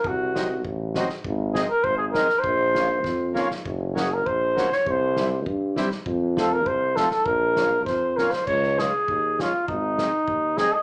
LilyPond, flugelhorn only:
\new Staff \with { instrumentName = "Flugelhorn" } { \time 2/4 \key bes \minor \tempo 4 = 100 ges'4 r4 | r8 aes'16 bes'16 c''16 aes'16 bes'8 | c''4. r8 | r8 aes'16 bes'16 c''8. des''16 |
c''4 r4 | r8 a'16 bes'16 c''8 a'16 a'16 | bes'4 c''8 bes'16 c''16 | \key des \major des''8 aes'4 f'8 |
ees'4. aes'16 ees''16 | }